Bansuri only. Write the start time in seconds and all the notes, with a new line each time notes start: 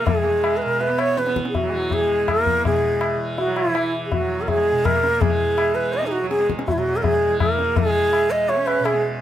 0.06 G#4
0.57 B4
0.62 A#4
0.81 B4
0.99 C#5
1.18 B4
1.49 G#4
1.55 F#4
1.93 G#4
2.30 A#4
2.66 G#4
3.38 F#4
3.57 E4
4.06 G#4
4.13 F#4
4.42 A#4
4.48 G#4
4.85 A#4
5.21 G#4
5.75 B4
5.93 D#5
6.07 G#4
6.12 F#4
6.30 G#4
6.67 F#4
6.72 E4
6.78 F#4
6.97 A#4
7.03 G#4
7.41 A#4
7.77 G#4
8.31 D#5
8.49 C#5
8.66 B4
8.85 G#4